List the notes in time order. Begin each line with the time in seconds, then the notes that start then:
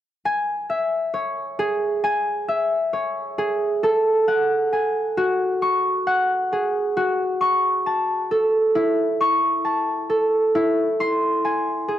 0.25 G#5
0.70 E5
1.14 C#5
1.59 G#4
2.04 G#5
2.48 E5
2.93 C#5
3.38 G#4
3.83 A4
4.28 F#5
4.73 G#5
5.17 F#4
5.62 C#6
6.07 F#5
6.53 G#4
6.97 F#4
7.41 C#6
7.86 A5
8.31 A4
8.75 E4
9.21 C#6
9.65 A5
10.10 A4
10.55 E4
11.00 C6
11.45 G#5
11.88 G#4